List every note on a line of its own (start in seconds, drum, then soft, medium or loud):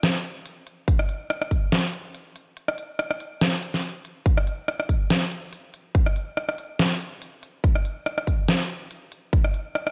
0.03 snare loud
0.03 closed hi-hat medium
0.24 closed hi-hat medium
0.46 closed hi-hat medium
0.67 closed hi-hat medium
0.88 kick loud
0.88 closed hi-hat medium
0.99 cross-stick medium
1.09 closed hi-hat medium
1.30 cross-stick medium
1.30 closed hi-hat medium
1.42 cross-stick medium
1.51 kick medium
1.51 closed hi-hat medium
1.72 snare loud
1.72 closed hi-hat medium
1.93 closed hi-hat medium
2.15 closed hi-hat medium
2.36 closed hi-hat medium
2.57 closed hi-hat medium
2.68 cross-stick medium
2.78 closed hi-hat medium
2.99 cross-stick medium
2.99 closed hi-hat medium
3.11 cross-stick medium
3.20 closed hi-hat medium
3.41 snare loud
3.41 closed hi-hat medium
3.63 closed hi-hat medium
3.74 snare soft
3.84 closed hi-hat medium
4.05 closed hi-hat medium
4.26 kick loud
4.26 closed hi-hat medium
4.37 cross-stick medium
4.47 closed hi-hat medium
4.68 cross-stick medium
4.68 closed hi-hat medium
4.80 cross-stick medium
4.89 kick medium
4.89 closed hi-hat medium
5.10 snare loud
5.10 closed hi-hat medium
5.31 closed hi-hat medium
5.53 closed hi-hat medium
5.74 closed hi-hat medium
5.95 kick loud
5.95 closed hi-hat medium
6.06 cross-stick medium
6.16 closed hi-hat medium
6.37 cross-stick medium
6.37 closed hi-hat medium
6.49 cross-stick medium
6.58 closed hi-hat medium
6.79 snare loud
6.79 closed hi-hat medium
7.01 closed hi-hat medium
7.22 closed hi-hat medium
7.43 closed hi-hat medium
7.64 kick loud
7.64 closed hi-hat medium
7.75 cross-stick medium
7.85 closed hi-hat medium
8.06 cross-stick medium
8.06 closed hi-hat medium
8.18 cross-stick medium
8.27 kick medium
8.27 closed hi-hat medium
8.48 snare loud
8.48 closed hi-hat medium
8.70 closed hi-hat medium
8.91 closed hi-hat medium
9.12 closed hi-hat medium
9.33 kick loud
9.33 closed hi-hat medium
9.44 cross-stick medium
9.54 closed hi-hat medium
9.75 cross-stick medium
9.75 closed hi-hat medium
9.87 cross-stick medium